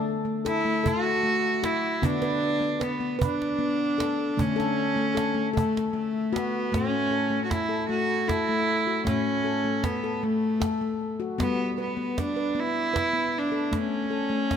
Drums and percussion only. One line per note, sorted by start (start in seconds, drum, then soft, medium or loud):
0.46 cajon slap medium
0.86 cajon bass medium
1.64 cajon slap medium
2.03 cajon bass medium
2.22 cajon slap soft
2.81 cajon slap medium
3.21 cajon bass medium
3.42 cajon slap soft
4.00 cajon slap medium
4.39 cajon bass medium
4.60 cajon slap soft
5.17 cajon slap medium
5.38 cajon slap soft
5.57 cajon bass medium
5.77 cajon slap soft
5.96 cajon slap soft
6.36 cajon slap medium
6.74 cajon bass medium
6.74 cajon slap soft
7.51 cajon bass medium
7.51 cajon slap medium
8.29 cajon bass medium
8.29 cajon slap medium
8.68 cajon slap soft
9.07 cajon bass medium
9.07 cajon slap medium
9.84 cajon bass medium
9.84 cajon slap medium
10.62 cajon bass medium
10.62 cajon slap medium
11.01 cajon slap soft
11.40 cajon bass medium
11.40 cajon slap medium
12.18 cajon bass medium
12.18 cajon slap medium
12.96 cajon bass medium
12.96 cajon slap medium
13.35 cajon slap soft
13.73 cajon bass soft
13.73 cajon slap soft
14.12 cajon slap soft
14.51 cajon bass soft
14.51 cajon slap soft